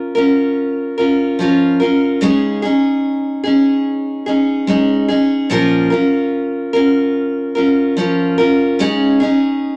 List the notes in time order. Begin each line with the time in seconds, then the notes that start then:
Already playing: C#4 F4 A#4
0.15 C#4 F4 A#4
0.98 C#4 F4 A#4
1.39 F3 C#4 F4 A#4
1.80 C#4 F4 A#4
2.21 C#3 G#3 C#4 D#4 G#4
2.62 C#4 D#4 G#4
3.44 C#4 D#4 G#4
4.26 C#4 D#4 G#4
4.67 G#3 C#4 D#4 G#4
5.08 C#4 D#4 G#4
5.50 A#2 F3 C#4 F4 A#4
5.90 C#4 F4 A#4
6.73 C#4 F4 A#4
7.55 C#4 F4 A#4
7.97 F3 C#4 F4 A#4
8.38 C#4 F4 A#4
8.79 C#3 G#3 C#4 D#4 G#4
9.20 C#4 D#4 G#4